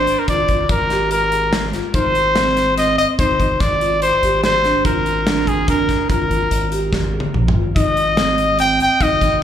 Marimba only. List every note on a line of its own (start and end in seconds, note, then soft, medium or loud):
0.00 0.21 D4 medium
0.29 0.46 F4 medium
0.50 0.83 F4 medium
0.91 1.25 G4 medium
1.32 1.66 G#4 medium
1.74 1.91 F4 medium
1.95 2.28 D#4 medium
2.36 2.70 C4 medium
2.78 3.11 C4 medium
3.19 3.36 D#4 medium
3.40 3.74 D#4 medium
3.82 4.16 F4 medium
4.23 4.57 G4 medium
4.65 4.82 D4 medium
4.85 5.19 F4 medium
5.27 5.61 D4 medium
5.68 6.02 D4 medium
6.10 6.27 F4 medium
6.31 6.64 F4 medium
6.72 7.06 G4 medium
7.13 7.47 G#4 medium
7.55 7.72 F4 medium
7.76 8.10 D#4 medium
8.18 8.52 C4 medium
8.59 8.93 C4 medium
9.01 9.18 D#4 medium
9.21 9.43 D#4 medium